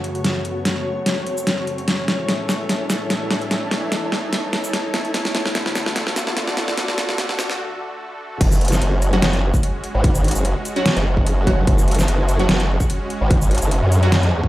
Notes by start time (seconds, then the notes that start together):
Already playing: F#2 C#3 A3 F#4 C#5 A5, riser
0.04 closed hi-hat
0.15 closed hi-hat
0.24 snare, closed hi-hat
0.45 closed hi-hat
0.65 snare, closed hi-hat
1.06 snare, closed hi-hat
1.27 closed hi-hat
1.37 shaker
1.47 snare, closed hi-hat
1.67 closed hi-hat
1.78 closed hi-hat
1.88 A2 E3 C#4 E4 A4 E5, snare, closed hi-hat
2.07 A5, snare, closed hi-hat
2.29 snare, closed hi-hat
2.49 snare, shaker
2.69 snare, closed hi-hat
2.90 snare, closed hi-hat, shaker
3.10 snare, closed hi-hat
3.31 snare, closed hi-hat
3.41 closed hi-hat
3.51 snare, closed hi-hat
3.71 snare, closed hi-hat
3.92 snare, closed hi-hat
4.12 snare
4.33 snare, closed hi-hat
4.53 snare, closed hi-hat
4.64 shaker
4.73 snare, closed hi-hat
4.94 snare, closed hi-hat
5.05 closed hi-hat
5.14 D2 D3 A3 F#4 A4, snare, closed hi-hat
5.25 snare
5.35 snare, closed hi-hat
5.42 D5, snare
5.55 snare, closed hi-hat
5.66 snare
5.75 snare, shaker
5.86 snare
5.96 snare, closed hi-hat
6.07 snare
6.16 snare, closed hi-hat, shaker
6.27 snare
6.37 snare, closed hi-hat
6.48 snare
6.57 snare, closed hi-hat
6.68 snare, closed hi-hat
6.78 snare, closed hi-hat
6.88 snare
6.98 snare, closed hi-hat
7.09 snare
7.18 snare, closed hi-hat
7.29 snare
7.39 snare, shaker
7.50 snare
8.41 F#1 G#3 C#4 F#4, kick, closed hi-hat, crash
8.52 shaker
8.61 closed hi-hat
8.65 closed hi-hat
8.68 closed hi-hat
8.72 snare, shaker
8.82 F#1, closed hi-hat
9.02 closed hi-hat, shaker
9.13 F#3 C#4 F#4, closed hi-hat
9.22 F#1, snare, closed hi-hat
9.33 closed hi-hat
9.54 kick, shaker
9.63 closed hi-hat
9.84 closed hi-hat
9.95 G#1
10.04 kick, closed hi-hat
10.15 shaker
10.24 closed hi-hat
10.28 closed hi-hat
10.31 closed hi-hat
10.35 F#1, shaker
10.45 closed hi-hat
10.65 closed hi-hat, shaker
10.76 F#3 C#4 F#4, closed hi-hat
10.86 snare, closed hi-hat
10.97 F#1, closed hi-hat
11.17 kick
11.27 closed hi-hat
11.47 F#3 C#4 F#4, kick, closed hi-hat
11.58 F#1
11.67 F#1, kick, closed hi-hat
11.78 shaker
11.88 closed hi-hat
11.91 closed hi-hat
11.95 closed hi-hat
11.99 snare, shaker
12.08 F#1, closed hi-hat
12.29 closed hi-hat, shaker
12.39 F#3 C#4 F#4, closed hi-hat
12.49 F#1, snare, closed hi-hat
12.60 closed hi-hat
12.80 kick, shaker
12.90 closed hi-hat
13.10 closed hi-hat
13.21 G#1
13.31 kick, closed hi-hat
13.41 shaker
13.51 closed hi-hat
13.55 closed hi-hat
13.58 closed hi-hat
13.62 F#1, shaker
13.71 closed hi-hat
13.82 F#2
13.92 closed hi-hat, shaker
14.03 F#3 C#4 F#4, closed hi-hat
14.12 snare, closed hi-hat
14.23 F2, closed hi-hat
14.44 kick